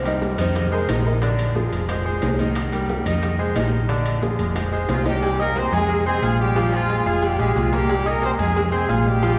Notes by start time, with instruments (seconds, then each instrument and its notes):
Already playing: fingered electric bass C2
0.05 grand piano G3 G4 A#4, kalimba D#4 D#5, high bongo, high conga, high timbale
0.21 grand piano G3 G4 A#4, high bongo, high conga, low timbale, maracas
0.38 fingered electric bass F2, grand piano D#3 D#4 D#5, kalimba C4 C5, high bongo, high conga, low conga, high timbale, maracas
0.55 high bongo, high conga, low conga, high timbale, maracas
0.72 grand piano G#3 G#4 C5, kalimba A#4 A#5, high conga
0.88 fingered electric bass A#1, grand piano D#3 D#4 D#5, high bongo, low bongo, high conga, high timbale, low timbale, maracas
1.05 kalimba A#4 A#5, high bongo, high conga, maracas
1.22 grand piano D3 D4 D5, high bongo, high conga, high timbale, maracas
1.39 high bongo, high conga, high timbale
1.55 grand piano F3 F4 G#4, high bongo, high conga, low timbale, maracas
1.72 fingered electric bass F1, high bongo, high conga, high timbale, maracas
1.89 grand piano G#3 G#4 C5, high bongo, high conga, high timbale, maracas
2.05 grand piano G#3 G#4 C5, high conga
2.22 fingered electric bass C2, high bongo, low bongo, high conga, high timbale, low timbale, maracas
2.39 grand piano D#3 D#4 D#5, high bongo, high conga, high timbale, maracas
2.55 high bongo, high conga, high timbale, maracas
2.72 grand piano G3 G4 A#4, high bongo, high conga, high timbale, maracas
2.89 grand piano G3 G4 A#4, high bongo, high conga, low timbale, maracas
3.05 fingered electric bass F2, grand piano D#3 D#4 D#5, high bongo, high conga, low conga, high timbale, maracas
3.23 high bongo, high conga, high timbale, maracas
3.39 grand piano G#3 G#4 C5, high conga
3.55 fingered electric bass A#1, grand piano D#3 D#4 D#5, high bongo, low bongo, high conga, high timbale, low timbale, maracas
3.73 high bongo, high conga, maracas
3.89 grand piano D3 D4 D5, high bongo, high conga, high timbale, maracas
4.06 high bongo, high conga, high timbale
4.22 grand piano F3 F4 G#4, high bongo, high conga, low timbale, maracas
4.39 fingered electric bass F1, high bongo, high conga, high timbale, maracas
4.55 grand piano G#3 G#4 C5, high bongo, high conga, high timbale, maracas
4.72 grand piano G#3 G#4 C5, high conga, maracas
4.89 fingered electric bass C2, horn section F3 F4, low bongo, high conga, high timbale, low timbale, maracas
5.06 grand piano D#3 D#4 D#5, horn section G3 G4, low bongo, high conga, high timbale, maracas
5.22 cowbell, high conga, low agogo, maracas
5.39 horn section A#3 A#4, grand piano D#4 D#5 D#6, high conga, low agogo
5.56 grand piano A#3 A#4 A#5, horn section C4 C5, cowbell, high conga, low agogo, maracas
5.72 fingered electric bass F2, grand piano G#3 G#4 G#5, horn section G#3 G#4, high conga, low conga, low agogo, maracas
5.89 cowbell, high conga, maracas
6.06 horn section G#3 G#4, grand piano C4 C5 C6, high conga, low agogo
6.22 fingered electric bass A#1, grand piano F4 F5 F6, cowbell, high conga, low agogo, maracas
6.39 horn section G3 G4, high conga, maracas
6.56 grand piano F3 F4 F5, cowbell, high conga, low agogo, maracas
6.73 horn section F3 F4, high conga, low agogo
6.89 grand piano G#3 G#4 G#5, cowbell, high conga, maracas
7.06 fingered electric bass F1, horn section G#3 G#4, grand piano F4 F5 F6, cowbell, high conga, low agogo, maracas
7.22 horn section G3 G4, cowbell, high conga, low agogo, maracas
7.39 fingered electric bass A#1, horn section G3 G4, grand piano G#3 G#4 G#5, high conga, maracas
7.53 fingered electric bass C2, horn section G4, cowbell, high conga, low agogo, maracas
7.57 horn section F3 F4
7.73 horn section G3 G4, grand piano A#3 A#4 A#5, cowbell, high conga, low agogo, maracas
7.89 cowbell, high conga, low agogo, maracas
8.05 horn section A#3 A#4, grand piano D#4 D#5 D#6, high conga, low agogo, maracas
8.22 grand piano A#3 A#4 A#5, horn section C4 C5, cowbell, high conga, low agogo, maracas
8.38 fingered electric bass F2, grand piano G#3 G#4 G#5, horn section G#3 G#4, high conga, low conga, low agogo, maracas
8.56 cowbell, high conga, low conga, maracas
8.72 horn section G#3 G#4, grand piano C4 C5 C6, high conga, low agogo, maracas
8.89 fingered electric bass A#1, grand piano F4 F5 F6, cowbell, high conga, low agogo, maracas
9.06 horn section G3 G4, high conga, maracas
9.22 grand piano F3 F4 F5, cowbell, high conga, low agogo, maracas